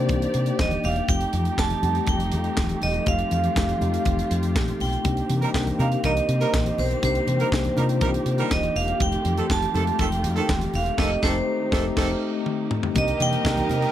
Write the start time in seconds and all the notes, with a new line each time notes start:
Already playing: C3 D#3 A#3 D4 D#4 G4 C5 D5
0.09 C2, kick, closed hi-hat, high conga
0.22 closed hi-hat
0.34 C3, closed hi-hat, muted conga
0.46 closed hi-hat
0.59 D#1 D#5, kick, snare, clap, muted conga, high conga
0.71 closed hi-hat, high conga
0.84 E1 F5, open hi-hat, muted conga, low conga
0.96 closed hi-hat
1.08 F1 F3 A3 C4 D#4 G4 G5, kick, closed hi-hat, muted conga, low conga
1.21 closed hi-hat
1.33 F2, closed hi-hat, muted conga, high conga
1.45 closed hi-hat
1.57 F1 A3 C4 D#4 G4 A5, kick, snare, clap, muted conga
1.70 closed hi-hat, high conga
1.82 F2 G3 C4 D#4 G4, closed hi-hat, muted conga, low conga
1.88 A3
1.95 closed hi-hat
2.07 F1 G5, kick, closed hi-hat, muted conga, high conga
2.20 closed hi-hat
2.32 F2, closed hi-hat, muted conga
2.44 closed hi-hat
2.57 D#1, kick, snare, clap, high conga
2.69 closed hi-hat, high conga
2.82 E1 D#5, open hi-hat, low conga
2.94 closed hi-hat
3.06 F1 A3 C4 D#4 F4 G4 F5, kick, closed hi-hat, muted conga, low conga
3.19 closed hi-hat
3.31 F2 F5, closed hi-hat, muted conga, high conga
3.44 closed hi-hat
3.56 F1 A3 C4 D#4 G4, kick, snare, clap
3.69 closed hi-hat, high conga
3.80 F2 A3 C4 D#4 G4, closed hi-hat, low conga
3.94 closed hi-hat
4.05 F1, kick, closed hi-hat, muted conga, high conga
4.19 closed hi-hat
4.31 F2, closed hi-hat, high conga
4.43 closed hi-hat
4.56 A#1, kick, snare, clap, muted conga, high conga
4.68 closed hi-hat, high conga
4.80 B1 G5, open hi-hat, muted conga, low conga
4.93 closed hi-hat
5.04 C2 D#3 A#3 C4 D4 D#4 G4, kick, closed hi-hat, muted conga, low conga
5.17 closed hi-hat
5.29 C3, closed hi-hat, muted conga, high conga
5.42 G3 D#4 A#4, closed hi-hat
5.54 C2 A#3 D4 D#4 A#4, kick, snare, clap
5.67 closed hi-hat, high conga
5.78 C3 G3 A#3 C4 D#4 G4 A#4 F5, closed hi-hat, low conga
5.92 closed hi-hat
6.04 C2 G3 D#4 A#4 D#5, kick, closed hi-hat, high conga
6.17 closed hi-hat
6.29 C3, closed hi-hat
6.41 G3 D#4 A#4, closed hi-hat
6.53 A#1, kick, snare, clap, muted conga, high conga
6.66 closed hi-hat, high conga
6.78 B1 C5, open hi-hat, low conga
6.91 closed hi-hat
7.02 C2 A#3 D4 D#4 G4 C5, kick, closed hi-hat, low conga
7.15 closed hi-hat
7.27 C3, closed hi-hat, high conga
7.40 G3 D#4 A#4, closed hi-hat
7.51 C2 A#3 D4 D#4 G4, kick, snare, clap, muted conga
7.64 closed hi-hat, high conga
7.76 C3 G3 A#3 D4 D#4 F4 A#4, closed hi-hat, low conga
7.89 closed hi-hat
8.01 C2 G3 D#4 A#4, kick, closed hi-hat, muted conga, high conga
8.14 closed hi-hat
8.26 C3, closed hi-hat, muted conga
8.38 G3 D#4 A#4, closed hi-hat
8.51 D#1 D#5, kick, snare, clap, high conga
8.63 closed hi-hat, high conga
8.76 E1 F5, open hi-hat, muted conga, low conga
8.88 closed hi-hat
8.99 F1 G3 A3 C4 D#4 F4 G4 G5, kick, closed hi-hat, low conga
9.06 A3
9.12 closed hi-hat
9.25 F2, closed hi-hat, muted conga, high conga
9.37 D#3 C4 A4, closed hi-hat
9.49 F1 A3 C4 D#4 G4 A5, kick, snare, clap
9.62 closed hi-hat, high conga
9.74 F2 D#3 G#3 C4 D#4 G4 A4, closed hi-hat, muted conga, low conga
9.80 A3
9.87 closed hi-hat
9.99 F1 D#3 C4 A4 G5, kick, closed hi-hat, muted conga, high conga
10.12 closed hi-hat
10.24 F2, closed hi-hat, muted conga
10.36 D#3 C4 A4, closed hi-hat
10.49 D#1, kick, snare, clap, muted conga, high conga
10.61 closed hi-hat, high conga
10.73 E1 F5, open hi-hat, low conga
10.86 closed hi-hat
10.97 F1 D#3 A3 C4 D#4 G4 A4 D#5, kick, snare, crash
11.22 F1 D#3 A3 C4 D#4 G4 A4 C5, kick, snare
11.71 F1 D#3 A3 C4 D#4 G4 A4, kick, snare
11.96 F1 D#3 A3 C4 D#4 G4 A4, kick, snare, crash
12.46 high tom
12.71 mid tom
12.83 floor tom
12.94 C2 D#3 G3 A#3 C4 D4 D#4 G4 A#4 D#5, kick, closed hi-hat, muted conga, low conga
13.08 closed hi-hat
13.19 C3 A#3 C4 D#4 G4 G5, closed hi-hat, high conga
13.33 closed hi-hat
13.45 C2, kick, snare, clap
13.57 closed hi-hat, high conga
13.69 C3, closed hi-hat, muted conga, low conga
13.82 closed hi-hat